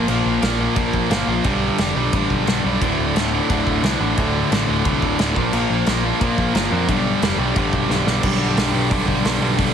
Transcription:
0.08 A#1 A#2 F3 A#3, crash
0.25 A#1
0.42 A#1 A#2 F3 A#3, snare, crash
0.59 A#2 F3 A#3
0.75 A#1 A#2 F3 A#3, kick, crash
0.93 A#1, kick
1.10 G1 A#2 F3 A#3, snare, crash
1.27 A#1 A#2 F3 A#3
1.44 B1 G2 D3 G3, kick, crash
1.78 F1 G2 D3 G3, snare, crash
1.95 B1 G2 D3 G3
2.13 A1 G2 D3 G3, kick, crash
2.30 B1, kick
2.47 B1 G2 D3 G3, snare, crash
2.64 B1 G2 D3 G3
2.81 D1 D2 A2 D3, kick, crash
2.98 D1
3.15 D1 D2 A2 D3, snare, crash
3.32 D2 A2 D3
3.49 D1 D2 A2 D3, kick, crash
3.67 D1, kick
3.83 C2 D2 A2 D3, snare, crash
4.00 A1 D2 A2 D3
4.18 D2 A2 D3, kick, crash
4.51 A1 D2 A2 D3, snare, crash
4.68 D1 D2 A2 D3
4.85 C2 D2 A2 D3, kick, crash
5.02 D1, kick
5.19 D1 D2 A2 D3, snare, crash
5.36 A#1 A#2 F3 A#3, kick
5.52 A#1 A#2 F3 A#3, crash
5.70 A#1
5.86 A#1 A#2 F3 A#3, snare, crash
6.04 A#2 F3 A#3
6.20 A#1 A#2 F3 A#3, kick, crash
6.38 A#1, kick
6.54 G1 A#2 F3 A#3, snare, crash
6.70 F2 A#2 F3 A#3
6.88 B1 G2 D3 G3, kick, crash
7.22 F1 G2 D3 G3, snare, crash
7.39 B1 G2 D3 G3
7.55 A1 G2 D3 G3, kick, crash
7.73 B1, kick
7.89 B1 G2 D3 G3, snare
8.06 B1 G2 D3 G3, snare
8.22 B1 G2 D3 G3 B3 D4, kick, crash
8.26 G4
8.39 G2 D3 G3
8.56 B1 G2 D3 G3, snare, open hi-hat
8.73 B1 G2 D3 G3
8.90 B1 G2 D3 G3, kick, open hi-hat
9.07 B1 G2 D3 G3, kick
9.24 B1 G2 D3 G3, snare, open hi-hat
9.41 B1 G2 D3 G3 B3 D4 G4
9.58 B1 G2 D3 G3 B3 D4 G4, kick, open hi-hat

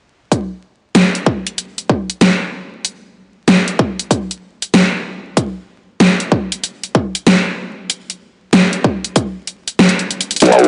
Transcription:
0.32 kick, closed hi-hat
0.95 snare, closed hi-hat
1.15 closed hi-hat
1.26 kick
1.47 closed hi-hat
1.58 closed hi-hat
1.78 closed hi-hat
1.90 kick
2.10 closed hi-hat
2.21 snare, closed hi-hat
2.85 closed hi-hat
3.48 snare, closed hi-hat
3.68 closed hi-hat
3.79 kick
3.99 closed hi-hat
4.11 kick, closed hi-hat
4.31 closed hi-hat
4.62 closed hi-hat
4.74 snare, closed hi-hat
5.37 kick, closed hi-hat
6.00 snare, closed hi-hat
6.20 closed hi-hat
6.32 kick
6.52 closed hi-hat
6.64 closed hi-hat
6.83 closed hi-hat
6.95 kick
7.15 closed hi-hat
7.27 snare, closed hi-hat
7.90 closed hi-hat
8.10 closed hi-hat
8.53 snare, closed hi-hat
8.73 closed hi-hat
8.84 kick
9.05 closed hi-hat
9.16 kick, closed hi-hat
9.47 closed hi-hat
9.68 closed hi-hat
9.79 snare
9.89 closed hi-hat
9.99 closed hi-hat
10.11 closed hi-hat
10.21 closed hi-hat
10.31 closed hi-hat
10.36 closed hi-hat
10.40 snare, closed hi-hat
10.42 B1, kick, closed hi-hat
10.52 closed hi-hat
10.59 closed hi-hat
10.64 closed hi-hat

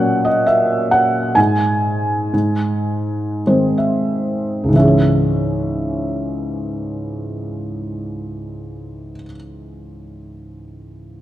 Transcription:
Already playing: A#2 F#3 A#3 C#4 C#5 F#5
0.25 D#5
0.46 E5
0.91 F#5
1.35 G#2 G#5
2.33 G#2
3.47 D#3 G#3 C4 C5
3.78 E5
4.64 C#2
4.68 G#2
4.73 E3 E5
4.78 C#4
4.83 G#4
4.87 C#5

